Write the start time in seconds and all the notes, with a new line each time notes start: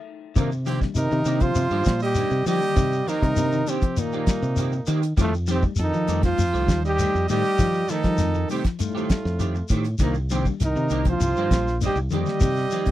0.36 A#2 C3 D#3 A#3 C4 D4 D#4 G4, kick, closed hi-hat, shekere
0.51 muted clean electric guitar stroke, shekere
0.66 C3 D#3 F3 A#3 C4 D4 G4, closed hi-hat, shekere
0.81 G3, muted clean electric guitar stroke, kick, snare, shekere
0.95 C3 D#3 D#4 A#4, closed hi-hat, shekere
1.11 C3 D#3, muted clean electric guitar stroke, shekere
1.25 C3 D#3 A#3 C4 D4 G4, closed hi-hat, shekere
1.40 F3 F4 C5, muted clean electric guitar stroke, kick, closed hi-hat, shekere
1.55 C3, muted clean electric guitar stroke, closed hi-hat, shekere
1.70 G2 D#3 A#3 C4 G4, shekere
1.85 A#2 G3, muted clean electric guitar stroke, kick, snare, closed hi-hat, shekere
2.00 G3 G4 D#5, shekere
2.15 D#3 A#3 C4 D4, muted clean electric guitar stroke, closed hi-hat, shekere
2.31 C3, muted clean electric guitar stroke, shekere
2.46 D3 D#3 F3 G3 A#3 G4 D#5, closed hi-hat, shekere
2.61 muted clean electric guitar stroke, shekere
2.76 C3 D#3, kick, closed hi-hat, shekere
2.92 muted clean electric guitar stroke, shekere
3.07 D#3 F3 A#3 C4 D#4 G4 A#4, snare, closed hi-hat, shekere
3.22 C3 G3, muted clean electric guitar stroke, kick, closed hi-hat, shekere
3.36 C3 D#3 A#3 D4, closed hi-hat, shekere
3.52 D#3, muted clean electric guitar stroke, shekere
3.66 C3 D#3 A#3 C4 D4 G4, closed hi-hat, shekere
3.81 F3, muted clean electric guitar stroke, kick, closed hi-hat, shekere
3.97 A#2 D#3 A#3 D#4 D5, muted clean electric guitar stroke, closed hi-hat, shekere
4.12 D#3 A#3 C4 G4, shekere
4.27 G3, muted clean electric guitar stroke, kick, snare, closed hi-hat, shekere
4.43 C3, shekere
4.56 D#3 A#3 C4 G4, closed hi-hat, shekere
4.72 muted clean electric guitar stroke, shekere
4.87 D#3 A#3 C4 G4, closed hi-hat, shekere
5.02 muted clean electric guitar stroke, closed hi-hat, shekere
5.17 F2 A2 D#3 G3 A3 C4 D#4 F4 G4, kick, closed hi-hat, shekere
5.21 A3
5.32 muted clean electric guitar stroke, shekere
5.47 C3 D#3 F3 G3 A3 C4 D#4 G4, closed hi-hat, shekere
5.51 C4
5.62 G3, muted clean electric guitar stroke, kick, shekere
5.76 F2 A4, closed hi-hat, shekere
5.80 D#3 D#4
5.93 D#3 F3, muted clean electric guitar stroke, shekere
6.07 F2 D#3 G3 A3 C4 D#4 G4, closed hi-hat, shekere
6.23 F3 F4 C5, muted clean electric guitar stroke, kick, snare, closed hi-hat, shekere
6.38 F2, muted clean electric guitar stroke, closed hi-hat, shekere
6.53 C2 D#3 A3 C4 G4, shekere
6.68 D#2 G3, muted clean electric guitar stroke, kick, snare, closed hi-hat, shekere
6.84 G3 G4 D#5, snare, shekere
6.98 D#3 G3 A3 C4 D#4 G4, closed hi-hat, shekere
7.15 F2, muted clean electric guitar stroke, shekere
7.29 A2 D#3 G3 A3 C4 D#4 G4 D#5, closed hi-hat, shekere
7.44 muted clean electric guitar stroke, shekere
7.59 D#3 F3, kick, closed hi-hat, shekere
7.74 muted clean electric guitar stroke, shekere
7.89 D#3 F3 A3 C4 D#4 A4, muted clean electric guitar stroke, snare, closed hi-hat, shekere
8.03 F3 G3, muted clean electric guitar stroke, kick, snare, closed hi-hat, shekere
8.18 F2 G3 A3 D#4, snare, closed hi-hat, shekere
8.34 D#3, muted clean electric guitar stroke, shekere
8.49 C3 D#3 G3 A3 C4 D#4 G4, open hi-hat, shekere
8.64 F3, muted clean electric guitar stroke, kick, snare, closed hi-hat, shekere
8.79 A2 G3 A3 D#4 F4, muted clean electric guitar stroke, closed hi-hat, shekere
8.95 D#3 A3 C4 G4, shekere
9.10 G3, muted clean electric guitar stroke, kick, snare, closed hi-hat, shekere
9.25 F2, snare, shekere
9.39 D#3 A3 C4 G4, closed hi-hat, shekere
9.55 muted clean electric guitar stroke, shekere
9.69 A2 D#3 A3 C4 G4, kick, closed hi-hat, shekere
9.84 muted clean electric guitar stroke, closed hi-hat, shekere
9.99 C2 A#2 D#3 A#3 C4 D4 D#4, muted clean electric guitar stroke, kick, closed hi-hat, shekere
10.03 A#3
10.14 muted clean electric guitar stroke, shekere
10.30 C3 D#3 F3 A#3 C4 D4 G4, snare, closed hi-hat, shekere
10.45 G3, muted clean electric guitar stroke, kick, shekere
10.60 C2 D#3 D#4, snare, closed hi-hat, shekere
10.64 A#4
10.76 C3 D#3, muted clean electric guitar stroke, shekere
10.90 C2 D#3 A#3 C4 D4 G4, closed hi-hat, shekere
11.05 F3, muted clean electric guitar stroke, kick, closed hi-hat, shekere
11.09 F4 C5
11.20 C2, muted clean electric guitar stroke, closed hi-hat, shekere
11.36 G2 D#3 A#3 C4 G4, shekere
11.51 A#1 G3, muted clean electric guitar stroke, kick, snare, closed hi-hat, shekere
11.67 snare, shekere
11.81 D#3 G3 A#3 C4 D4 G4, closed hi-hat, shekere
11.85 G4 D#5
11.96 C2, muted clean electric guitar stroke, shekere
12.10 F2 D3 D#3 G3 A#3 C4 G4, closed hi-hat, shekere
12.15 G4 D#5
12.26 muted clean electric guitar stroke, snare, shekere
12.40 C3 D#3, kick, closed hi-hat, shekere
12.56 muted clean electric guitar stroke, snare, shekere
12.71 D#3 F3 A#3 C4 G4, closed hi-hat, shekere
12.85 C3 G3, muted clean electric guitar stroke, kick, closed hi-hat, shekere